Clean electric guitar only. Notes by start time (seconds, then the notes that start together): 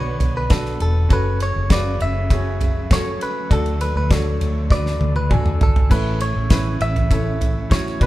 Already playing: C#5
0.37 B4
0.51 A4
0.82 A4
1.13 B4
1.43 C#5
1.72 D5
2.02 E5
2.93 C#5
3.23 B4
3.53 A4
3.81 B4
3.97 B4
4.11 C#5
4.72 D5
5.16 B4
5.32 A4
5.63 A4
5.92 B4
6.22 C#5
6.82 E5
7.72 C#5
8.03 B4